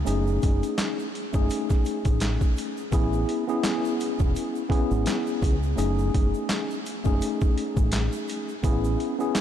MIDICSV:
0, 0, Header, 1, 4, 480
1, 0, Start_track
1, 0, Tempo, 714286
1, 44, Time_signature, 4, 2, 24, 8
1, 6323, End_track
2, 0, Start_track
2, 0, Title_t, "Tine electric piano"
2, 0, Program_c, 0, 4
2, 31, Note_on_c, 0, 57, 84
2, 36, Note_on_c, 0, 61, 85
2, 41, Note_on_c, 0, 63, 83
2, 46, Note_on_c, 0, 68, 102
2, 708, Note_off_c, 0, 57, 0
2, 710, Note_off_c, 0, 61, 0
2, 713, Note_off_c, 0, 63, 0
2, 715, Note_off_c, 0, 68, 0
2, 894, Note_on_c, 0, 57, 88
2, 898, Note_on_c, 0, 61, 81
2, 903, Note_on_c, 0, 63, 80
2, 908, Note_on_c, 0, 68, 101
2, 1886, Note_off_c, 0, 57, 0
2, 1888, Note_off_c, 0, 61, 0
2, 1891, Note_off_c, 0, 63, 0
2, 1893, Note_off_c, 0, 68, 0
2, 1960, Note_on_c, 0, 59, 83
2, 1965, Note_on_c, 0, 61, 80
2, 1970, Note_on_c, 0, 64, 85
2, 1975, Note_on_c, 0, 68, 106
2, 2305, Note_off_c, 0, 59, 0
2, 2308, Note_off_c, 0, 61, 0
2, 2310, Note_off_c, 0, 64, 0
2, 2313, Note_off_c, 0, 68, 0
2, 2333, Note_on_c, 0, 59, 89
2, 2338, Note_on_c, 0, 61, 77
2, 2343, Note_on_c, 0, 64, 79
2, 2347, Note_on_c, 0, 68, 109
2, 3102, Note_off_c, 0, 59, 0
2, 3105, Note_off_c, 0, 61, 0
2, 3107, Note_off_c, 0, 64, 0
2, 3109, Note_off_c, 0, 68, 0
2, 3153, Note_on_c, 0, 59, 97
2, 3157, Note_on_c, 0, 61, 91
2, 3163, Note_on_c, 0, 64, 82
2, 3167, Note_on_c, 0, 68, 108
2, 3720, Note_off_c, 0, 59, 0
2, 3722, Note_off_c, 0, 61, 0
2, 3725, Note_off_c, 0, 64, 0
2, 3727, Note_off_c, 0, 68, 0
2, 3870, Note_on_c, 0, 57, 84
2, 3875, Note_on_c, 0, 61, 87
2, 3880, Note_on_c, 0, 63, 82
2, 3885, Note_on_c, 0, 68, 105
2, 4547, Note_off_c, 0, 57, 0
2, 4550, Note_off_c, 0, 61, 0
2, 4552, Note_off_c, 0, 63, 0
2, 4554, Note_off_c, 0, 68, 0
2, 4732, Note_on_c, 0, 57, 91
2, 4737, Note_on_c, 0, 61, 79
2, 4742, Note_on_c, 0, 63, 81
2, 4747, Note_on_c, 0, 68, 102
2, 5725, Note_off_c, 0, 57, 0
2, 5728, Note_off_c, 0, 61, 0
2, 5730, Note_off_c, 0, 63, 0
2, 5732, Note_off_c, 0, 68, 0
2, 5799, Note_on_c, 0, 59, 88
2, 5804, Note_on_c, 0, 61, 81
2, 5808, Note_on_c, 0, 64, 86
2, 5813, Note_on_c, 0, 68, 106
2, 6145, Note_off_c, 0, 59, 0
2, 6147, Note_off_c, 0, 61, 0
2, 6149, Note_off_c, 0, 64, 0
2, 6152, Note_off_c, 0, 68, 0
2, 6171, Note_on_c, 0, 59, 87
2, 6176, Note_on_c, 0, 61, 79
2, 6181, Note_on_c, 0, 64, 82
2, 6186, Note_on_c, 0, 68, 104
2, 6323, Note_off_c, 0, 59, 0
2, 6323, Note_off_c, 0, 61, 0
2, 6323, Note_off_c, 0, 64, 0
2, 6323, Note_off_c, 0, 68, 0
2, 6323, End_track
3, 0, Start_track
3, 0, Title_t, "Fingered electric bass"
3, 0, Program_c, 1, 33
3, 45, Note_on_c, 1, 30, 111
3, 254, Note_off_c, 1, 30, 0
3, 291, Note_on_c, 1, 30, 88
3, 406, Note_off_c, 1, 30, 0
3, 902, Note_on_c, 1, 30, 88
3, 992, Note_off_c, 1, 30, 0
3, 1381, Note_on_c, 1, 33, 85
3, 1589, Note_off_c, 1, 33, 0
3, 1966, Note_on_c, 1, 33, 99
3, 2174, Note_off_c, 1, 33, 0
3, 2822, Note_on_c, 1, 28, 88
3, 2912, Note_off_c, 1, 28, 0
3, 3301, Note_on_c, 1, 32, 95
3, 3391, Note_off_c, 1, 32, 0
3, 3645, Note_on_c, 1, 37, 91
3, 3853, Note_off_c, 1, 37, 0
3, 3884, Note_on_c, 1, 30, 107
3, 4093, Note_off_c, 1, 30, 0
3, 4130, Note_on_c, 1, 30, 85
3, 4246, Note_off_c, 1, 30, 0
3, 4742, Note_on_c, 1, 30, 93
3, 4832, Note_off_c, 1, 30, 0
3, 5220, Note_on_c, 1, 33, 88
3, 5429, Note_off_c, 1, 33, 0
3, 5805, Note_on_c, 1, 33, 102
3, 6013, Note_off_c, 1, 33, 0
3, 6323, End_track
4, 0, Start_track
4, 0, Title_t, "Drums"
4, 43, Note_on_c, 9, 82, 82
4, 50, Note_on_c, 9, 42, 75
4, 110, Note_off_c, 9, 82, 0
4, 117, Note_off_c, 9, 42, 0
4, 181, Note_on_c, 9, 82, 49
4, 249, Note_off_c, 9, 82, 0
4, 282, Note_on_c, 9, 82, 49
4, 289, Note_on_c, 9, 42, 70
4, 290, Note_on_c, 9, 36, 86
4, 349, Note_off_c, 9, 82, 0
4, 356, Note_off_c, 9, 42, 0
4, 357, Note_off_c, 9, 36, 0
4, 422, Note_on_c, 9, 82, 47
4, 425, Note_on_c, 9, 42, 52
4, 489, Note_off_c, 9, 82, 0
4, 492, Note_off_c, 9, 42, 0
4, 523, Note_on_c, 9, 82, 70
4, 525, Note_on_c, 9, 38, 115
4, 528, Note_on_c, 9, 39, 95
4, 529, Note_on_c, 9, 42, 107
4, 590, Note_off_c, 9, 82, 0
4, 592, Note_off_c, 9, 38, 0
4, 595, Note_off_c, 9, 39, 0
4, 596, Note_off_c, 9, 42, 0
4, 666, Note_on_c, 9, 82, 42
4, 733, Note_off_c, 9, 82, 0
4, 774, Note_on_c, 9, 42, 66
4, 841, Note_off_c, 9, 42, 0
4, 896, Note_on_c, 9, 82, 49
4, 902, Note_on_c, 9, 36, 90
4, 963, Note_off_c, 9, 82, 0
4, 969, Note_off_c, 9, 36, 0
4, 1006, Note_on_c, 9, 82, 65
4, 1013, Note_on_c, 9, 42, 90
4, 1073, Note_off_c, 9, 82, 0
4, 1080, Note_off_c, 9, 42, 0
4, 1139, Note_on_c, 9, 38, 33
4, 1140, Note_on_c, 9, 82, 52
4, 1144, Note_on_c, 9, 36, 89
4, 1207, Note_off_c, 9, 38, 0
4, 1207, Note_off_c, 9, 82, 0
4, 1211, Note_off_c, 9, 36, 0
4, 1242, Note_on_c, 9, 82, 52
4, 1252, Note_on_c, 9, 42, 72
4, 1310, Note_off_c, 9, 82, 0
4, 1319, Note_off_c, 9, 42, 0
4, 1377, Note_on_c, 9, 42, 50
4, 1380, Note_on_c, 9, 36, 98
4, 1381, Note_on_c, 9, 82, 55
4, 1444, Note_off_c, 9, 42, 0
4, 1447, Note_off_c, 9, 36, 0
4, 1448, Note_off_c, 9, 82, 0
4, 1481, Note_on_c, 9, 42, 107
4, 1485, Note_on_c, 9, 82, 61
4, 1490, Note_on_c, 9, 38, 118
4, 1493, Note_on_c, 9, 39, 96
4, 1548, Note_off_c, 9, 42, 0
4, 1553, Note_off_c, 9, 82, 0
4, 1557, Note_off_c, 9, 38, 0
4, 1560, Note_off_c, 9, 39, 0
4, 1619, Note_on_c, 9, 36, 85
4, 1620, Note_on_c, 9, 82, 51
4, 1687, Note_off_c, 9, 36, 0
4, 1687, Note_off_c, 9, 82, 0
4, 1723, Note_on_c, 9, 82, 45
4, 1736, Note_on_c, 9, 42, 80
4, 1790, Note_off_c, 9, 82, 0
4, 1803, Note_off_c, 9, 42, 0
4, 1863, Note_on_c, 9, 82, 46
4, 1930, Note_off_c, 9, 82, 0
4, 1963, Note_on_c, 9, 82, 80
4, 1965, Note_on_c, 9, 36, 121
4, 1970, Note_on_c, 9, 42, 74
4, 2031, Note_off_c, 9, 82, 0
4, 2032, Note_off_c, 9, 36, 0
4, 2037, Note_off_c, 9, 42, 0
4, 2102, Note_on_c, 9, 82, 51
4, 2170, Note_off_c, 9, 82, 0
4, 2210, Note_on_c, 9, 42, 65
4, 2277, Note_off_c, 9, 42, 0
4, 2343, Note_on_c, 9, 82, 47
4, 2410, Note_off_c, 9, 82, 0
4, 2443, Note_on_c, 9, 82, 71
4, 2444, Note_on_c, 9, 38, 119
4, 2447, Note_on_c, 9, 39, 95
4, 2448, Note_on_c, 9, 42, 105
4, 2511, Note_off_c, 9, 38, 0
4, 2511, Note_off_c, 9, 82, 0
4, 2514, Note_off_c, 9, 39, 0
4, 2515, Note_off_c, 9, 42, 0
4, 2586, Note_on_c, 9, 82, 44
4, 2653, Note_off_c, 9, 82, 0
4, 2689, Note_on_c, 9, 82, 49
4, 2694, Note_on_c, 9, 42, 70
4, 2756, Note_off_c, 9, 82, 0
4, 2761, Note_off_c, 9, 42, 0
4, 2816, Note_on_c, 9, 82, 49
4, 2822, Note_on_c, 9, 36, 85
4, 2883, Note_off_c, 9, 82, 0
4, 2889, Note_off_c, 9, 36, 0
4, 2926, Note_on_c, 9, 82, 65
4, 2933, Note_on_c, 9, 42, 90
4, 2993, Note_off_c, 9, 82, 0
4, 3000, Note_off_c, 9, 42, 0
4, 3060, Note_on_c, 9, 82, 51
4, 3127, Note_off_c, 9, 82, 0
4, 3157, Note_on_c, 9, 36, 90
4, 3171, Note_on_c, 9, 42, 68
4, 3224, Note_off_c, 9, 36, 0
4, 3238, Note_off_c, 9, 42, 0
4, 3300, Note_on_c, 9, 82, 54
4, 3367, Note_off_c, 9, 82, 0
4, 3400, Note_on_c, 9, 42, 113
4, 3404, Note_on_c, 9, 82, 59
4, 3409, Note_on_c, 9, 38, 118
4, 3412, Note_on_c, 9, 39, 96
4, 3467, Note_off_c, 9, 42, 0
4, 3472, Note_off_c, 9, 82, 0
4, 3476, Note_off_c, 9, 38, 0
4, 3479, Note_off_c, 9, 39, 0
4, 3539, Note_on_c, 9, 82, 54
4, 3606, Note_off_c, 9, 82, 0
4, 3643, Note_on_c, 9, 82, 44
4, 3644, Note_on_c, 9, 36, 92
4, 3655, Note_on_c, 9, 42, 83
4, 3710, Note_off_c, 9, 82, 0
4, 3711, Note_off_c, 9, 36, 0
4, 3722, Note_off_c, 9, 42, 0
4, 3782, Note_on_c, 9, 82, 45
4, 3850, Note_off_c, 9, 82, 0
4, 3883, Note_on_c, 9, 82, 82
4, 3889, Note_on_c, 9, 42, 79
4, 3950, Note_off_c, 9, 82, 0
4, 3957, Note_off_c, 9, 42, 0
4, 4022, Note_on_c, 9, 82, 51
4, 4089, Note_off_c, 9, 82, 0
4, 4129, Note_on_c, 9, 42, 68
4, 4130, Note_on_c, 9, 36, 82
4, 4196, Note_off_c, 9, 42, 0
4, 4197, Note_off_c, 9, 36, 0
4, 4262, Note_on_c, 9, 82, 46
4, 4329, Note_off_c, 9, 82, 0
4, 4363, Note_on_c, 9, 38, 121
4, 4363, Note_on_c, 9, 82, 72
4, 4367, Note_on_c, 9, 39, 92
4, 4368, Note_on_c, 9, 42, 103
4, 4430, Note_off_c, 9, 82, 0
4, 4431, Note_off_c, 9, 38, 0
4, 4434, Note_off_c, 9, 39, 0
4, 4435, Note_off_c, 9, 42, 0
4, 4506, Note_on_c, 9, 82, 43
4, 4573, Note_off_c, 9, 82, 0
4, 4608, Note_on_c, 9, 82, 51
4, 4613, Note_on_c, 9, 42, 70
4, 4676, Note_off_c, 9, 82, 0
4, 4680, Note_off_c, 9, 42, 0
4, 4735, Note_on_c, 9, 82, 50
4, 4741, Note_on_c, 9, 36, 86
4, 4802, Note_off_c, 9, 82, 0
4, 4808, Note_off_c, 9, 36, 0
4, 4845, Note_on_c, 9, 82, 67
4, 4852, Note_on_c, 9, 42, 92
4, 4913, Note_off_c, 9, 82, 0
4, 4919, Note_off_c, 9, 42, 0
4, 4979, Note_on_c, 9, 82, 51
4, 4984, Note_on_c, 9, 36, 89
4, 5046, Note_off_c, 9, 82, 0
4, 5051, Note_off_c, 9, 36, 0
4, 5091, Note_on_c, 9, 42, 72
4, 5158, Note_off_c, 9, 42, 0
4, 5219, Note_on_c, 9, 36, 94
4, 5219, Note_on_c, 9, 82, 55
4, 5286, Note_off_c, 9, 36, 0
4, 5287, Note_off_c, 9, 82, 0
4, 5320, Note_on_c, 9, 42, 112
4, 5324, Note_on_c, 9, 82, 60
4, 5329, Note_on_c, 9, 38, 121
4, 5332, Note_on_c, 9, 39, 98
4, 5387, Note_off_c, 9, 42, 0
4, 5392, Note_off_c, 9, 82, 0
4, 5396, Note_off_c, 9, 38, 0
4, 5399, Note_off_c, 9, 39, 0
4, 5459, Note_on_c, 9, 82, 54
4, 5526, Note_off_c, 9, 82, 0
4, 5563, Note_on_c, 9, 82, 46
4, 5575, Note_on_c, 9, 42, 80
4, 5630, Note_off_c, 9, 82, 0
4, 5642, Note_off_c, 9, 42, 0
4, 5703, Note_on_c, 9, 82, 45
4, 5770, Note_off_c, 9, 82, 0
4, 5803, Note_on_c, 9, 82, 82
4, 5804, Note_on_c, 9, 36, 118
4, 5809, Note_on_c, 9, 42, 77
4, 5871, Note_off_c, 9, 36, 0
4, 5871, Note_off_c, 9, 82, 0
4, 5876, Note_off_c, 9, 42, 0
4, 5942, Note_on_c, 9, 82, 51
4, 6009, Note_off_c, 9, 82, 0
4, 6049, Note_on_c, 9, 42, 66
4, 6116, Note_off_c, 9, 42, 0
4, 6182, Note_on_c, 9, 82, 48
4, 6249, Note_off_c, 9, 82, 0
4, 6283, Note_on_c, 9, 82, 71
4, 6284, Note_on_c, 9, 38, 120
4, 6286, Note_on_c, 9, 39, 95
4, 6287, Note_on_c, 9, 42, 108
4, 6323, Note_off_c, 9, 38, 0
4, 6323, Note_off_c, 9, 39, 0
4, 6323, Note_off_c, 9, 42, 0
4, 6323, Note_off_c, 9, 82, 0
4, 6323, End_track
0, 0, End_of_file